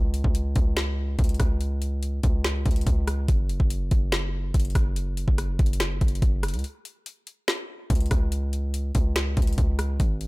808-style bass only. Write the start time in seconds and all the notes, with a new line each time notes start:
Already playing: C#2
0.24 C#2
0.56 C#2
1.19 C#2
1.40 C#2
2.24 C#2
2.66 C#2
2.87 C#2
3.28 F#1
3.60 F#1
3.91 F#1
4.54 F#1
4.75 F#1
5.28 F#1
5.59 F#1
6.01 F#1
6.22 F#1
6.54 C#2
7.90 C#2
8.11 C#2
8.95 C#2
9.37 C#2
9.58 C#2
10.00 G#1